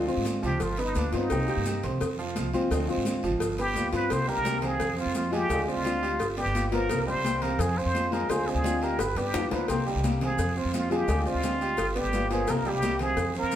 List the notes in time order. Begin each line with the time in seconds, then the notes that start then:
0.07 G#3 C4 F4 C5 C6, high conga, maracas
0.17 G#2
0.25 D3 G#3 C4 F4, cowbell, high conga, short guiro, maracas
0.43 D2 F3 F4 G4 F5, high conga, short guiro, maracas
0.60 G1 F4, muted nylon-string guitar stroke, cowbell, high conga, long guiro, maracas
0.77 B3 D#4 B4 B5, cowbell, high conga, maracas
0.95 D2 G3 B3 D4 F4, cowbell, high conga, short guiro, maracas
1.12 G2 B3 C4 D#4 F4 C5 C6, cowbell, short guiro, maracas
1.30 C2 C3 D#3 A#3 C4 G4, cowbell, high conga, long guiro, maracas
1.48 D#3 A#3 C4 G4 G5 G6, high conga, maracas
1.57 G2
1.65 D#3 A#3 C4 G4, cowbell, high conga, short guiro, maracas
1.83 C2 C4 C5 C6, cowbell, high conga, low conga, short guiro, maracas
2.01 F2, muted nylon-string guitar stroke, cowbell, high conga, long guiro, maracas
2.19 F3 F4 F5, high conga, maracas
2.35 C2 F3 G#3 C4 F4, cowbell, high conga, short guiro, maracas
2.54 F3 G#3 C4 F4 C5 C6, high conga, short guiro, maracas
2.70 D2 D3 F3 G#3 C4 F4 F5, cowbell, high conga, long guiro, maracas
2.88 G#3 C4 F4 C5 C6, high conga, maracas
2.97 G#2
3.05 D3 G#3 C4 F4, cowbell, high conga, short guiro, maracas
3.23 G#1 F3 F4 F5, high conga, short guiro, maracas
3.40 G1, muted nylon-string guitar stroke, cowbell, high conga, long guiro, maracas
3.58 B3 G4 B4 B5, cowbell, high conga, maracas
3.75 D2 G3 B3 F4, cowbell, high conga, short guiro, maracas
3.92 G2 B3 C4 F4 B4 C5 C6, cowbell, short guiro, maracas
4.09 C2 C3 D#3 A#3 C4 G4 C5, cowbell, high conga, long guiro, maracas
4.27 G3 G4 A#4 G5, high conga, maracas
4.37 C2
4.44 C3 D#3 A#3 C4 G4, cowbell, high conga, short guiro, maracas
4.62 C4 G#4 C5 F5, cowbell, high conga, low conga, short guiro, maracas
4.80 F2, muted nylon-string guitar stroke, cowbell, high conga, low conga, long guiro, maracas
4.97 C4 F4 C5 F5, high conga, maracas
5.06 F2
5.14 F3 G#3 C4 F4, cowbell, high conga, short guiro, maracas
5.31 F3 G#3 C4 F4 G4 G#4 G#5, high conga, short guiro, maracas
5.49 D2 D3 G#3 C4 F4 G#4 G#5, cowbell, high conga, long guiro, maracas
5.68 C4 F4 C5 D5, high conga, maracas
5.76 D2
5.83 D3 G#3 C4 F4, cowbell, high conga, short guiro, maracas
6.02 G4 G5, high conga, short guiro, maracas
6.19 G1, muted nylon-string guitar stroke, cowbell, high conga, long guiro, maracas
6.37 B3 G4 B4 D5, cowbell, high conga, maracas
6.46 G1
6.53 G3 B3 F4, cowbell, high conga, short guiro, maracas
6.71 A#3 B3 F4 A#4 C5, cowbell, high conga, short guiro, maracas
6.89 C2 C3 D#3 A#3 C4 G4, cowbell, high conga, long guiro, maracas
7.07 G3 G4 C5 G5, high conga, maracas
7.15 C2
7.24 C3 D#3 A#3 C4 G4, cowbell, high conga, short guiro, maracas
7.42 C4 A#4 C5 F5, cowbell, high conga, low conga, short guiro, maracas
7.59 F2 G#4, muted nylon-string guitar stroke, cowbell, high conga, low conga, long guiro, maracas
7.77 C4 C5 F5, high conga, maracas
7.86 F2
7.93 F3 G#3 C4 F4, cowbell, high conga, short guiro, maracas
8.11 F3 G#3 C4 F4 G#4 A#4 G#5, high conga, short guiro, maracas
8.28 D2 D3 G#3 C4 F4 G#4 C5 G#5, cowbell, high conga, long guiro, maracas
8.47 C4 G#4 C5 D5, high conga, maracas
8.55 D2
8.63 D3 G#3 C4 F4, cowbell, high conga, short guiro, maracas
8.82 G4 A#4 G5, high conga, short guiro, maracas
8.99 G1 B4, muted nylon-string guitar stroke, cowbell, high bongo, high conga, long guiro, maracas
9.16 G2 B3 G4 B4 D5, cowbell, high conga, maracas
9.33 F2 G3 B3 F4, cowbell, low bongo, high conga, short guiro, maracas
9.51 D2 A#3 B3 F4 A#4 B4 C5, cowbell, low bongo, high conga, short guiro, maracas
9.68 C2 C3 D#3 A#3 C4 G4 C5, cowbell, high conga, long guiro, maracas
9.86 G3 G4 G5, maracas
9.95 C2
10.03 C3 D#3 A#3 C4 G4, cowbell, high conga, short guiro, maracas
10.21 C4 G#4 C5 F5, cowbell, high conga, low conga, short guiro, maracas
10.38 F2, muted nylon-string guitar stroke, cowbell, high conga, long guiro, maracas
10.56 C4 F4 C5 F5, high conga, maracas
10.65 F2
10.73 F3 G#3 C4 F4, cowbell, high conga, short guiro, maracas
10.90 F3 G#3 C4 F4 G4 G#4 G#5, high conga, short guiro, maracas
11.08 D2 D3 G#3 C4 F4 G#4 G#5, cowbell, high conga, long guiro, maracas
11.26 C4 F4 C5 D5, high conga, maracas
11.34 D2
11.43 D3 G#3 C4 F4, cowbell, high conga, short guiro, maracas
11.61 G4 G5, high conga, short guiro, maracas
11.77 G1, muted nylon-string guitar stroke, cowbell, high conga, long guiro, maracas
11.95 B3 G4 B4 D5, cowbell, high conga, maracas
12.04 G1
12.13 G3 B3 F4, cowbell, high conga, short guiro, maracas
12.30 A#3 B3 F4 G#4 A#4 C5, cowbell, short guiro, maracas
12.47 C2 C3 D#3 A#3 C4 G4 A#4, cowbell, high conga, long guiro, maracas
12.65 G3 G4 G5, high conga, maracas
12.74 C2
12.82 C3 D#3 A#3 C4 G4, cowbell, high conga, short guiro, maracas
12.99 C4 G#4 C5 F5, cowbell, high conga, low conga, short guiro, maracas
13.17 F2, muted nylon-string guitar stroke, cowbell, high conga, low conga, long guiro, maracas
13.34 C4 A#4 C5 F5, high conga, maracas
13.43 F2
13.52 F3, cowbell, maracas